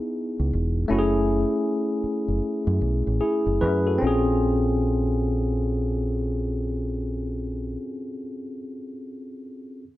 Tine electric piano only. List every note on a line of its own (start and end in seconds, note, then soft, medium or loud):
0.00 0.47 B3 medium
0.00 0.48 D#4 medium
0.00 0.49 E4 medium
0.00 0.52 G#4 medium
0.88 3.97 A3 medium
0.88 3.98 C#4 medium
0.88 3.16 E4 medium
0.92 0.99 F#4 medium
0.99 3.19 G#4 medium
3.21 3.58 E4 soft
3.21 3.58 G#4 medium
3.61 3.85 G#4 soft
3.61 3.85 B4 medium
3.87 4.26 F#4 soft
3.87 4.25 A4 soft
3.98 7.72 C4 medium
3.98 7.75 C#4 medium
4.04 7.78 F4 medium
4.04 7.81 G#4 medium